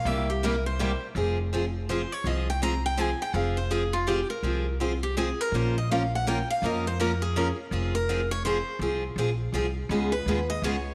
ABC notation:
X:1
M:3/4
L:1/16
Q:"Swing" 1/4=165
K:Fm
V:1 name="Steel-string acoustic guitar"
=e2 G2 B2 c4- c z | z8 c2 d2 | e2 g2 b2 g2 a2 g2 | f2 c2 A2 F2 G2 B2- |
B4 z2 G2 A2 B2 | c2 e2 f2 _g2 =g2 f2 | e2 c2 B2 A4 z2 | z2 B4 d2 c4 |
z12 | z2 _c4 e2 d4 |]
V:2 name="Steel-string acoustic guitar"
[C,G,B,=EG]2 z2 [C,G,B,EG] z3 [C,G,B,EG] z3 | [F,CFA]2 z2 [F,CFA] z3 [F,CFA] z3 | [F,CFA]2 z2 [F,CFA] z3 [F,CFA] z3 | [F,CFA]2 z2 [F,CFA] z3 [F,CFA] z3 |
[F,CFA]2 z2 [F,CFA] z3 [F,CFA] z3 | [F,B,DFB]2 z2 [F,B,DFB] z3 [F,B,DFB] z3 | [F,B,DFB]2 z2 [F,B,DFB] z3 [F,B,DFB] z3 | [F,CFA]2 z2 [F,CFA] z3 [F,CFA] z3 |
[F,CFA]2 z2 [F,CFA] z3 [F,CFA] z3 | [D,A,_CFA]2 z2 [D,A,CFA] z3 [D,A,CFA] z3 |]
V:3 name="Upright bass" clef=bass
C,,12 | F,,,12 | C,,12 | F,,,12 |
C,,12 | B,,,12 | F,,12 | F,,,12 |
C,,4 B,,,4 C,,4 | D,,4 E,,4 D,,4 |]